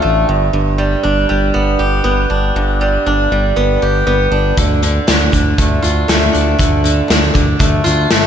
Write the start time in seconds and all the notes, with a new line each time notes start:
Already playing: D3 D4 F4
0.02 A1 A3
0.29 G1 G2
0.53 G1 G2
0.78 G3
1.03 G1 D4
1.29 G1 G3
1.54 G1 B3
1.79 G1 G4
2.04 G1 B3
2.30 G1 D4
2.56 G1 G2
2.81 G3
3.06 G1 D4
3.32 G1 G3
3.56 G1 B3
3.82 G1 G4
4.07 G1 B3
4.31 G1 D4
4.57 D2 D3, kick, closed hi-hat
4.83 D3, closed hi-hat
5.07 D2 D4, snare, closed hi-hat
5.32 D2 D3, kick, closed hi-hat
5.58 D2 A3, kick, closed hi-hat
5.82 D2 F4, closed hi-hat
6.08 D2 A3, snare, closed hi-hat
6.33 D2 D4, closed hi-hat
6.59 D2 D3, kick, closed hi-hat
6.84 D3, closed hi-hat
7.08 D2 D4, snare, closed hi-hat
7.34 D2 D3, kick, closed hi-hat
7.59 D2 A3, kick, closed hi-hat
7.84 D2 F4, closed hi-hat
8.10 G1 A3, snare, closed hi-hat